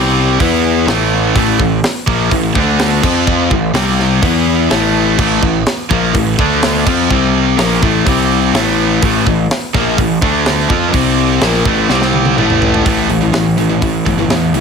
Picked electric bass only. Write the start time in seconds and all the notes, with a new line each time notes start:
Already playing: C2
0.40 E2
0.87 A1
1.35 A1
1.59 A1
2.07 A#1
2.31 A1
2.56 D2
3.03 F2
3.51 A1
3.74 C2
4.22 E2
4.71 A1
5.18 A1
5.42 A1
5.90 A#1
6.14 A1
6.39 D2
6.86 F2
7.10 C2
7.58 A#1
7.82 A1
8.06 C2
8.54 A1
9.03 A1
9.26 A1
9.74 A#1
9.98 A1
10.22 D2
10.70 F2
10.93 C2
11.42 A#1
11.65 A1
11.90 C2
12.37 A1
12.86 A1
13.09 A1
13.33 A1
13.57 A1
13.82 A1
14.06 G1
14.30 E2
14.54 C2